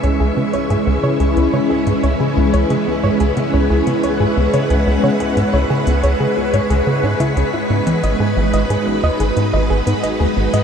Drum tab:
HH |x--xx--xx--xx--x|x--xx--xx--xx--x|x--xx--xx--xx--x|x--xx--xx--xx--x|
CG |---o--o------o--|---o--o--o------|---o--o------o--|---o--o--o------|